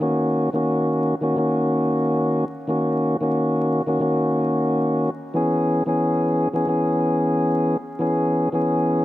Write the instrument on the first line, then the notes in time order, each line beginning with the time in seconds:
tonewheel organ
0.00 D#3 A#3 C#4 F#4
0.53 D#3 A#3 C#4 F#4
1.21 D#3 A#3 C#4 F#4
1.36 D#3 A#3 C#4 F#4
2.68 D#3 A#3 C#4 F#4
3.21 D#3 A#3 C#4 F#4
3.87 D#3 A#3 C#4 F#4
4.00 D#3 A#3 C#4 F#4
5.34 E3 B3 C#4 G#4
5.86 E3 B3 C#4 G#4
6.53 E3 B3 C#4 G#4
6.67 E3 B3 C#4 G#4
7.99 E3 B3 C#4 G#4
8.52 E3 B3 C#4 G#4